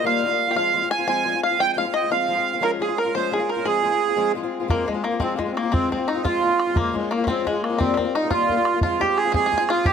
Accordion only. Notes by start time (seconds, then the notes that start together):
0.05 F5
0.57 F5
0.91 G#5
1.09 G#5
1.45 F5
1.60 G5
1.73 G5
1.78 F5
1.95 D#5
2.11 F5
2.63 A#4
2.81 G#4
2.98 A#4
3.15 C5
3.34 G#4
3.50 A#4
3.67 G#4
4.71 A#3
4.89 G#3
5.06 A#3
5.22 C4
5.34 A#3
5.41 G#3
5.52 C4
5.56 A#3
5.73 C4
5.91 C4
6.09 D#4
6.26 F4
6.78 A#3
6.95 G#3
7.13 A#3
7.29 C4
7.48 G#3
7.63 A#3
7.78 C4
7.99 C4
8.16 D#4
8.32 F4
8.82 F4
9.00 G4
9.16 G#4
9.35 G#4
9.70 F4
9.87 G4